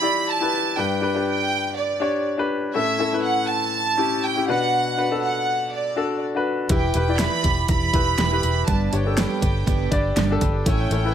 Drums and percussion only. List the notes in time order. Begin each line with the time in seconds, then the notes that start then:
6.69 kick, closed hi-hat
6.94 closed hi-hat
7.19 snare, closed hi-hat
7.44 kick, snare, closed hi-hat
7.68 kick, closed hi-hat
7.94 kick, closed hi-hat
8.18 snare, closed hi-hat
8.43 closed hi-hat
8.68 kick, closed hi-hat
8.93 closed hi-hat
9.17 snare, closed hi-hat
9.42 kick, closed hi-hat
9.67 kick, closed hi-hat
9.92 kick, closed hi-hat
10.17 snare, closed hi-hat
10.41 kick, closed hi-hat
10.66 kick, closed hi-hat
10.91 closed hi-hat